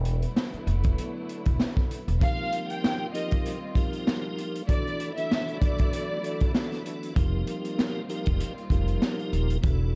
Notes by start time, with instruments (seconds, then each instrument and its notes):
Already playing: upright bass E1, string section D3 F#3 A3 B3 E4
0.05 closed hi-hat
0.22 closed hi-hat
0.36 snare
0.53 muted upright bass stroke, closed hi-hat
0.67 upright bass F1, closed hi-hat
0.84 kick, closed hi-hat
0.98 closed hi-hat
1.29 closed hi-hat
1.46 upright bass E1, kick, closed hi-hat
1.60 snare
1.77 kick, snare
1.91 closed hi-hat
2.08 upright bass E1, closed hi-hat
2.20 string section D#3 G3 A#3 C4 F4, tonewheel organ F3 D#4 G4 A#4, violin section F5, kick, closed hi-hat
2.53 closed hi-hat
2.70 violin section G5, closed hi-hat
2.84 snare
3.14 tonewheel organ F3 D#4 G4 A#4, violin section D#5, closed hi-hat
3.31 kick, closed hi-hat
3.46 closed hi-hat
3.75 tonewheel organ F3 D#4 G4 A#4, kick, closed hi-hat
3.93 closed hi-hat
4.07 snare
4.38 closed hi-hat
4.56 closed hi-hat
4.67 string section D3 F#3 A3 B3 E4, tonewheel organ E3 D4 F#4 A4, violin section D5, kick, closed hi-hat
4.87 closed hi-hat
5.00 closed hi-hat
5.17 tonewheel organ E3 D4 F#4 A4, violin section E5, closed hi-hat
5.31 snare
5.48 closed hi-hat
5.61 tonewheel organ E3 D4 F#4 A4, violin section D5, kick, closed hi-hat
5.78 kick, closed hi-hat
5.93 closed hi-hat
6.22 tonewheel organ E3 D4 F#4 A4, closed hi-hat
6.40 kick, closed hi-hat
6.54 tonewheel organ E3 D4 F#4 A4, snare
6.72 snare, closed hi-hat
6.85 tonewheel organ E3 D4 F#4 A4, closed hi-hat
7.03 closed hi-hat
7.15 upright bass F1, string section D#3 G3 A#3 C4 F4, tonewheel organ F3 D#4 G4 A#4, kick, closed hi-hat
7.47 closed hi-hat
7.65 closed hi-hat
7.79 snare
8.09 tonewheel organ F3 D#4 G4 A#4, closed hi-hat
8.26 upright bass F1, kick, closed hi-hat
8.40 closed hi-hat
8.58 closed hi-hat
8.70 upright bass F1, tonewheel organ F3 D#4 G4 A#4, kick, closed hi-hat
8.88 closed hi-hat
9.02 snare
9.19 closed hi-hat
9.33 upright bass D#1, closed hi-hat
9.50 closed hi-hat
9.62 upright bass E1, string section D3 F#3 A3 B3 E4, tonewheel organ E3 D4 F#4 A4, kick, closed hi-hat